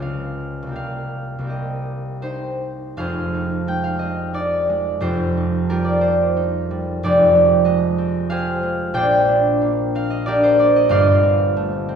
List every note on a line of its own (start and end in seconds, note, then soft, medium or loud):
0.00 0.73 C#2 medium
0.00 0.74 G#3 soft
0.00 0.67 C4 soft
0.00 0.77 F4 soft
0.00 2.21 C5 medium
0.00 0.78 C#5 medium
0.00 0.74 F5 medium
0.63 1.37 C2 medium
0.67 1.39 A#3 soft
0.67 1.43 C4 soft
0.72 1.46 G4 soft
0.72 2.96 F5 medium
1.39 2.97 C2 soft
1.39 2.98 A#3 soft
1.44 3.99 C4 soft
1.44 2.22 G4 soft
1.49 3.98 D#5 medium
2.22 3.33 D#4 medium
2.22 3.03 G4 soft
2.22 2.99 C5 medium
2.97 4.99 F1 medium
2.97 5.00 F2 medium
2.97 5.06 G#4 medium
2.97 5.00 C5 medium
2.97 3.82 F5 loud
3.34 4.32 D#4 medium
3.67 4.68 G#3 medium
3.67 3.97 G5 medium
3.84 4.13 F5 medium
3.99 7.90 C4 soft
3.99 7.02 D#5 medium
4.33 5.36 D#4 medium
4.33 5.49 D5 medium
4.69 5.06 G#3 medium
5.00 7.02 F1 medium
5.00 7.03 F2 medium
5.00 5.69 F4 medium
5.00 5.70 G4 medium
5.00 6.00 C5 loud
5.37 6.35 D#4 medium
5.69 6.70 G3 medium
5.69 9.61 F4 medium
5.69 7.05 G4 medium
5.69 7.04 A#4 medium
5.84 6.14 D5 medium
6.01 7.03 A#3 medium
6.01 8.31 C5 medium
6.37 7.04 D#4 medium
6.71 10.61 G3 medium
7.03 8.98 F1 medium
7.03 8.99 F2 medium
7.03 7.34 G4 medium
7.03 8.30 G#4 medium
7.03 8.12 D5 loud
7.35 8.29 G4 medium
7.65 8.61 G#3 medium
7.65 8.75 D#5 medium
7.98 9.94 C4 medium
8.30 10.26 G4 medium
8.30 8.98 G#4 medium
8.30 8.95 C5 medium
8.30 9.94 F5 loud
8.63 8.98 G#3 medium
8.94 10.94 A#1 medium
8.94 10.42 C5 medium
8.94 10.25 D5 medium
8.94 11.96 G5 loud
9.28 10.26 D4 medium
9.62 10.58 A#3 medium
9.95 11.21 C4 medium
9.95 10.22 F5 loud
10.10 10.38 D#5 medium
10.26 11.96 D4 medium
10.26 11.96 G4 medium
10.26 11.96 A#4 medium
10.26 10.58 D5 loud
10.43 10.71 C5 loud
10.59 11.96 A#3 medium
10.59 10.87 D5 loud
10.76 11.04 D#5 loud
10.89 11.96 G1 medium
10.89 11.96 G2 loud
10.89 11.96 C5 medium
10.89 11.96 D5 medium
10.89 11.96 F5 loud
11.23 11.87 C4 medium
11.57 11.96 A3 medium
11.89 11.96 C4 medium